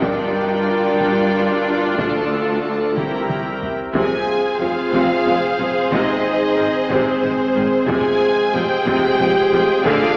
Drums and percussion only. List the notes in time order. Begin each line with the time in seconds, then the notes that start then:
0.02 taiko
1.00 taiko
1.99 taiko
2.97 taiko mid
3.30 taiko mid
3.62 taiko low
3.95 taiko
4.93 taiko
5.92 taiko
6.90 taiko
7.89 taiko
8.87 taiko
9.85 taiko